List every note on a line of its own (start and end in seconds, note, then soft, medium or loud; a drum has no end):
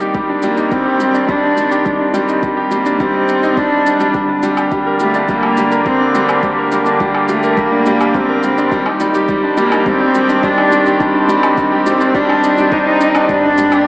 0.00 4.15 D#3 medium
0.00 0.15 G3 medium
0.00 0.97 A#3 medium
0.00 5.98 C4 medium
0.00 0.58 D#4 medium
0.00 4.15 G4 medium
0.00 0.14 G4 medium
0.00 4.15 D5 medium
0.00 shaker soft
0.14 0.29 G3 medium
0.14 kick loud
0.14 shaker soft
0.29 0.43 D4 medium
0.42 0.57 G3 medium
0.42 0.74 A#3 medium
0.42 shaker medium
0.57 0.71 D#4 medium
0.57 shaker soft
0.71 0.85 G3 medium
0.71 1.31 C4 medium
0.71 kick loud
0.71 shaker soft
0.86 1.00 G4 medium
1.00 1.14 G3 medium
1.00 shaker medium
1.14 1.28 D4 medium
1.14 shaker soft
1.28 1.42 G3 medium
1.28 1.86 D4 medium
1.28 kick loud
1.28 shaker soft
1.43 1.57 D#4 medium
1.57 1.71 G3 medium
1.57 shaker medium
1.71 1.85 G4 medium
1.71 shaker soft
1.85 1.99 G3 medium
1.85 kick medium
1.85 shaker soft
2.00 2.14 D4 medium
2.14 2.28 G3 medium
2.14 shaker medium
2.28 2.42 D#4 medium
2.28 shaker soft
2.43 2.57 G3 medium
2.43 kick loud
2.43 shaker soft
2.57 2.71 G4 medium
2.71 2.85 G3 medium
2.71 3.02 A#3 medium
2.71 shaker medium
2.86 3.00 D4 medium
2.86 shaker soft
3.00 3.14 G3 medium
3.00 3.59 C4 medium
3.00 kick loud
3.00 shaker soft
3.14 3.27 D#4 medium
3.29 3.37 D#4 medium
3.29 shaker medium
3.43 3.57 D#4 medium
3.43 shaker soft
3.57 3.66 G3 medium
3.57 4.15 D4 medium
3.57 kick loud
3.57 shaker soft
3.72 3.85 D#4 medium
3.86 4.00 D4 medium
3.86 shaker medium
4.00 4.13 G3 medium
4.00 shaker soft
4.14 8.72 D3 medium
4.14 4.28 G3 medium
4.14 kick medium
4.14 shaker soft
4.29 4.43 D4 medium
4.43 4.57 G3 medium
4.43 shaker medium
4.57 9.47 A#3 medium
4.57 4.71 G4 medium
4.57 low woodblock medium
4.57 shaker soft
4.71 4.86 G3 medium
4.71 kick loud
4.71 shaker soft
4.86 5.00 A#4 medium
5.00 5.14 G3 medium
5.00 5.27 A3 medium
5.00 shaker medium
5.14 5.29 D4 medium
5.14 13.87 G4 medium
5.14 shaker soft
5.29 5.43 G3 medium
5.29 5.83 A#3 medium
5.29 kick loud
5.29 shaker soft
5.43 5.57 G4 medium
5.43 low woodblock medium
5.57 5.71 G3 medium
5.57 13.87 D5 medium
5.57 shaker medium
5.72 5.86 A#4 medium
5.72 shaker soft
5.86 6.00 G3 medium
5.86 6.40 C4 medium
5.86 kick loud
5.86 shaker soft
6.00 6.14 D4 medium
6.15 6.29 G3 medium
6.15 shaker medium
6.29 6.43 G4 medium
6.29 low woodblock medium
6.29 shaker soft
6.43 6.57 G3 medium
6.43 kick loud
6.43 shaker soft
6.58 6.72 A#4 medium
6.72 6.86 G3 medium
6.72 shaker medium
6.86 7.00 D4 medium
6.86 shaker soft
7.00 7.14 G3 medium
7.00 kick medium
7.00 shaker soft
7.14 7.29 G4 medium
7.14 low woodblock medium
7.29 7.43 G3 medium
7.29 7.59 A3 medium
7.29 shaker medium
7.43 7.57 A#4 medium
7.43 shaker soft
7.57 7.72 G3 medium
7.57 8.15 A#3 loud
7.57 kick loud
7.57 shaker soft
7.72 7.86 D4 medium
7.86 8.00 G3 loud
7.86 shaker medium
8.01 8.14 G4 medium
8.01 low woodblock medium
8.01 shaker soft
8.14 8.29 G3 medium
8.14 8.72 C4 loud
8.14 kick loud
8.14 shaker soft
8.29 8.43 A#4 medium
8.43 8.57 G3 medium
8.43 shaker medium
8.58 8.72 D4 medium
8.58 shaker soft
8.71 13.29 D#3 medium
8.71 8.86 G3 loud
8.71 kick medium
8.71 shaker soft
8.86 9.00 D#4 medium
8.86 low woodblock medium
8.91 13.87 C4 medium
9.00 9.14 G3 medium
9.00 shaker medium
9.14 9.28 G4 medium
9.14 shaker soft
9.29 9.43 G3 medium
9.29 kick loud
9.29 shaker soft
9.44 9.57 D4 medium
9.57 9.71 G3 loud
9.57 9.88 A#3 medium
9.57 shaker medium
9.72 9.86 D#4 medium
9.72 low woodblock medium
9.72 shaker soft
9.86 10.00 G3 medium
9.86 10.45 C4 loud
9.86 kick loud
9.86 shaker soft
10.01 10.14 G4 medium
10.15 10.29 G3 medium
10.15 shaker medium
10.29 10.43 D4 medium
10.29 shaker soft
10.43 10.57 G3 medium
10.43 11.01 D4 loud
10.43 kick loud
10.43 shaker soft
10.58 10.71 D#4 medium
10.58 low woodblock medium
10.72 10.86 G3 medium
10.72 shaker medium
10.86 11.00 G4 medium
10.86 shaker soft
11.00 11.14 G3 medium
11.00 kick loud
11.00 shaker soft
11.14 11.28 D4 medium
11.29 11.43 G3 loud
11.29 shaker medium
11.43 11.57 D#4 medium
11.43 low woodblock medium
11.43 shaker soft
11.57 11.71 G3 medium
11.57 kick medium
11.57 shaker soft
11.72 11.86 G4 medium
11.86 12.00 G3 medium
11.86 12.16 C4 medium
11.86 shaker medium
12.01 12.14 D4 medium
12.01 shaker soft
12.14 12.29 G3 loud
12.14 12.73 D4 loud
12.14 kick loud
12.14 shaker soft
12.29 12.42 D#4 medium
12.29 low woodblock medium
12.43 12.57 D#4 medium
12.43 shaker medium
12.57 12.71 G3 medium
12.57 shaker soft
12.72 12.80 D#4 loud
12.72 12.86 C5 medium
12.72 kick loud
12.72 shaker soft
12.78 12.87 D4 medium
12.85 12.99 D4 medium
12.85 13.29 D#4 loud
13.01 13.14 D4 medium
13.01 shaker medium
13.15 13.29 D4 medium
13.15 low woodblock medium
13.15 shaker soft
13.29 13.87 G1 medium
13.29 13.87 D3 medium
13.29 13.43 G3 medium
13.29 13.87 D4 loud
13.29 kick loud
13.29 shaker soft
13.44 13.87 A#3 medium
13.44 13.52 D4 medium
13.58 13.66 G3 medium
13.58 shaker medium
13.72 13.80 G4 medium
13.72 low woodblock medium
13.72 shaker soft